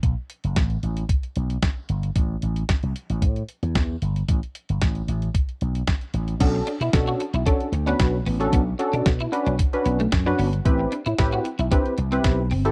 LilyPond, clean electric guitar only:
\new Staff \with { instrumentName = "Clean electric guitar" } { \time 4/4 \key b \minor \tempo 4 = 113 r1 | r1 | r1 | r8 d'16 e'16 r16 fis'16 r16 e'16 d'16 r8 b16 r8 b16 r16 |
b16 r8 d'16 r16 e'16 r16 d'16 r8 b16 a16 r16 d'16 b16 r16 | r8 d'16 e'16 r16 fis'16 r16 e'16 d'16 r8 c'16 r8 c'16 r16 | }